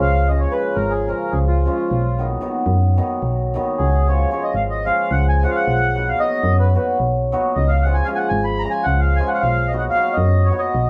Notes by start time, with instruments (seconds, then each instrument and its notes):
0.00 fm bass C#2, accordion F5
0.28 hammered dulcimer C#3 F3 G#3 C#4, accordion D#5
0.40 accordion C#5
0.51 hammered dulcimer C#3 F3 G#3 C#4, accordion B4
0.75 fm bass G#1, accordion A#4
0.91 accordion G#4
1.07 hammered dulcimer C#3 F3 G#3 C#4, accordion A#4
1.31 fm bass C#2, accordion G#4
1.47 accordion F4
1.65 hammered dulcimer C#3 F3 G#3 C#4
1.91 fm bass B1
2.18 hammered dulcimer D#3 F#3 B3 D#4
2.41 hammered dulcimer D#3 F#3 B3 D#4
2.66 fm bass F#2
2.97 hammered dulcimer D#3 F#3 B3 D#4
3.22 fm bass B1
3.54 hammered dulcimer D#3 F#3 B3 D#4
3.78 fm bass C#2, accordion G#4
4.07 hammered dulcimer F3 G#3 C#4 F4, accordion C#5
4.31 hammered dulcimer F3 G#3 C#4 F4, accordion C#5
4.44 accordion D#5
4.54 fm bass G#1, accordion F5
4.70 accordion D#5
4.85 hammered dulcimer F3 G#3 C#4 F4, accordion F5
5.11 fm bass C#2, accordion F#5
5.29 accordion G#5
5.43 hammered dulcimer F3 G#3 C#4 F4, accordion F#5
5.50 accordion F5
5.56 accordion F#5
5.67 fm bass B1
5.95 hammered dulcimer F#3 B3 D#4 F#4
6.09 accordion F5
6.19 hammered dulcimer F#3 B3 D#4 F#4, accordion D#5
6.43 fm bass F#2
6.59 accordion B4
6.74 hammered dulcimer F#3 B3 D#4 F#4, accordion B4
7.00 fm bass B1
7.32 hammered dulcimer F#3 B3 D#4 F#4
7.55 fm bass C#2, accordion D#5
7.68 accordion F5
7.82 hammered dulcimer F3 G#3 C#4 F4, accordion F#5
7.94 accordion G#5
8.05 hammered dulcimer F3 G#3 C#4 F4, accordion F5
8.15 accordion F#5 G#5
8.29 fm bass G#1, accordion G#5
8.44 accordion B5
8.59 accordion A#5
8.63 hammered dulcimer F3 G#3 C#4 F4
8.71 accordion G#5
8.84 fm bass C#2, accordion F#5
9.00 accordion F5
9.16 hammered dulcimer F3 G#3 C#4, accordion G#5
9.21 hammered dulcimer F4
9.28 accordion F#5
9.34 accordion F5 F#5
9.40 fm bass B1, accordion F5
9.68 accordion D#5
9.72 hammered dulcimer F#3 B3 D#4 F#4
9.78 accordion F#5
9.90 accordion F5
9.95 hammered dulcimer F#3 B3 D#4 F#4
10.13 accordion D#5
10.17 fm bass F#2
10.45 accordion C#5
10.50 hammered dulcimer F#3 B3 D#4 F#4
10.58 accordion D#5
10.74 fm bass B1